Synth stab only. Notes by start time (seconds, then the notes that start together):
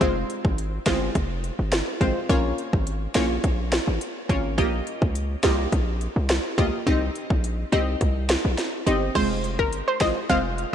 0.01 G#3 C4 F4 C5
0.86 G#3 C4 F4 C5
2.01 G#3 C4 F4 C5
2.29 A#3 C#4 F4 C#5
3.15 A#3 C#4 F4 C#5
4.29 A#3 C#4 F4 C#5
4.58 A#3 F4 G4 D#5
5.44 A#3 F4 G4 D#5
6.58 A#3 F4 G4 D#5
6.86 C4 D#4 G4 D#5
7.72 C4 D#4 G4 D#5
8.86 C4 D#4 G4 D#5
9.15 G#3 C4 F4 C5
10.01 G#3 C4 F4 C5
10.29 G#3 C4 F4 C5